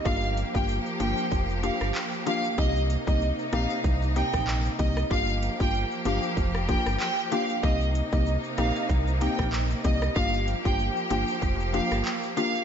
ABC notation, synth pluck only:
X:1
M:4/4
L:1/16
Q:"Swing 16ths" 1/4=95
K:Cm
V:1 name="Synth pluck"
[B,DFG]3 [B,DFG] z2 [B,DFG] z3 [B,DFG] z3 [B,DFG]2 | [B,CEG]3 [B,CEG] z2 [B,CEG] z3 [B,CEG] z3 [B,CEG]2 | [B,DFG]3 [B,DFG] z2 [B,DFG] z3 [B,DFG] z3 [B,DFG]2 | [B,CEG]3 [B,CEG] z2 [B,CEG] z3 [B,CEG] z3 [B,CEG]2 |
[B,DFG]3 [B,DFG] z2 [B,DFG] z3 [B,DFG] z3 [B,DFG]2 |]